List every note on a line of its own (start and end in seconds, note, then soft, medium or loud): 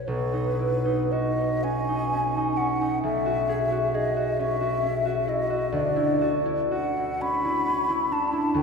0.00 0.54 B3 soft
0.00 0.32 D#4 soft
0.00 0.61 B4 soft
0.08 3.02 B1 soft
0.08 1.13 B4 medium
0.34 0.84 D#4 soft
0.59 1.04 E4 soft
0.85 1.37 D#4 soft
1.12 3.25 F#4 soft
1.12 1.65 D#5 medium
1.38 1.88 D#4 soft
1.64 2.12 C#4 soft
1.64 2.58 G#5 medium
1.89 2.36 D#4 soft
2.13 2.58 C#4 soft
2.37 2.80 D#4 soft
2.57 2.97 C#4 soft
2.57 3.02 F#5 soft
2.81 3.07 D#4 soft
3.03 5.76 B1 soft
3.03 3.97 E5 medium
3.26 3.71 F#4 soft
3.49 3.87 G#4 soft
3.72 4.15 F#4 soft
3.94 5.76 G#4 soft
3.94 4.42 D#5 medium
4.17 4.60 F#4 soft
4.39 4.82 C#4 soft
4.39 5.30 E5 medium
4.61 5.04 F#4 soft
4.83 7.20 C#4 soft
5.05 5.49 F#4 soft
5.27 5.66 E4 soft
5.27 5.74 D#5 medium
5.50 6.20 F#4 soft
5.72 8.53 D2 soft
5.72 6.44 D5 medium
5.96 6.44 E4 soft
6.21 6.64 F#4 soft
6.46 6.96 E4 soft
6.71 8.58 F#4 soft
6.71 7.23 F#5 medium
6.97 7.44 E4 soft
7.21 7.67 C#4 soft
7.21 8.14 B5 medium
7.45 7.89 E4 soft
7.68 8.63 C#4 soft
7.90 8.32 E4 soft
8.11 8.48 D4 soft
8.11 8.59 A5 medium
8.33 8.63 E4 soft
8.54 8.63 D2 soft
8.54 8.63 G5 medium